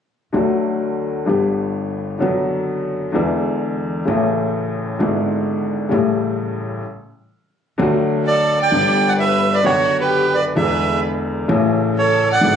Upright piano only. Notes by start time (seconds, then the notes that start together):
0.33 D2 D3 F#3 A3 F#4
1.26 G1 G2 D3 G3 B3 G4
2.19 F#2 D3 F#3 B3 F#4
3.12 E2 D3 E3 G#3 B3
3.16 E4
4.05 A1 A2 C#3 E3 A3
4.09 E4
4.99 G#1 G#2 D3 G#3 B3
5.03 E4
5.89 A1 A2 C#3 G3 A3
5.93 E4
7.78 D2 D3 F#3 A3 F#4
8.71 G1 G2 D3 G3 B3
8.75 G4
9.63 F#2 D3 B3 F#5
10.55 E2 D3 E3 G#3 B3 E4
11.48 A1 A2 C#3 E3 A3 E4
12.41 G#1 G#2 D3 G#3 B3
12.45 E4